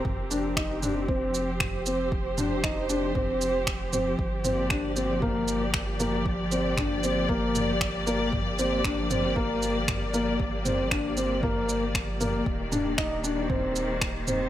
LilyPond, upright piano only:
\new Staff \with { instrumentName = "Upright piano" } { \time 4/4 \key g \minor \tempo 4 = 116 r8 d'8 ees'8 d'8 c'4 r8 c'8 | r8 d'8 ees'8 d'8 c'4 r8 c'8 | r8 c'8 d'8 c'8 bes4 r8 bes8 | r8 c'8 d'8 c'8 bes4 r8 bes8 |
r8 c'8 d'8 c'8 bes4 r8 bes8 | r8 c'8 d'8 c'8 bes4 r8 bes8 | r8 d'8 ees'8 d'8 c'4 r8 c'8 | }